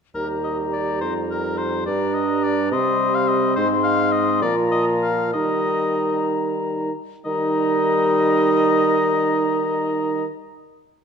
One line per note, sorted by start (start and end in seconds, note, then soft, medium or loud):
0.15 1.03 D#2 soft
0.15 2.69 G3 soft
0.15 1.04 G4 soft
0.15 0.28 A#4 soft
0.15 1.83 A#5 soft
0.44 0.57 D#5 soft
0.73 1.00 D5 medium
1.01 1.86 F2 soft
1.01 1.86 D#4 soft
1.01 1.14 C5 soft
1.30 1.59 A#4 medium
1.58 1.85 C5 medium
1.86 2.74 G2 medium
1.86 2.74 D4 soft
1.86 2.16 D5 medium
1.86 2.74 A#5 soft
2.14 2.45 D#5 medium
2.43 2.71 D5 medium
2.72 3.56 C3 medium
2.72 3.58 G3 medium
2.72 4.44 C4 medium
2.72 3.17 D#5 medium
2.72 3.56 C6 medium
3.15 3.30 F5 medium
3.28 3.55 D#5 medium
3.56 4.44 G#2 medium
3.56 4.44 G#3 medium
3.56 3.69 C5 medium
3.56 4.44 C6 medium
3.83 4.13 F5 medium
4.12 4.41 D#5 medium
4.42 5.34 A#2 medium
4.42 5.33 F3 medium
4.42 5.34 F4 medium
4.42 4.56 D5 medium
4.42 5.34 A#5 medium
4.72 4.86 D#5 medium
5.03 5.33 F5 medium
5.33 6.91 D#3 medium
5.33 6.90 G3 medium
5.33 6.90 D#4 soft
5.33 6.26 D#5 medium
5.33 6.91 A#5 soft
7.25 10.24 D#3 medium
7.25 10.25 G3 medium
7.25 10.24 D#4 medium
7.25 10.24 D#5 medium
7.25 10.24 A#5 medium